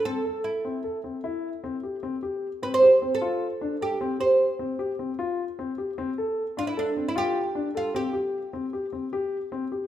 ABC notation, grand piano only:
X:1
M:5/4
L:1/8
Q:1/4=152
K:Dm
V:1 name="Grand piano"
C A2 C A C E2 C G | C G2 C G C F2 D A | C G2 C G C F2 C G | C A2 D A C F2 D A |
C G2 C G C G2 C G |]